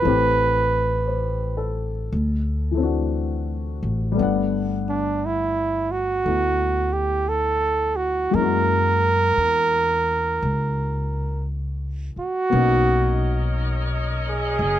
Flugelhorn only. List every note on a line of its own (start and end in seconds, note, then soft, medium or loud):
0.00 1.79 B4 medium
4.90 5.28 D4 medium
5.26 5.93 E4 medium
5.92 6.95 F#4 medium
6.93 7.30 G4 medium
7.29 7.98 A4 medium
7.96 8.36 F#4 medium
8.35 11.47 A#4 loud
12.20 13.53 F#4 medium
14.30 14.79 G#4 medium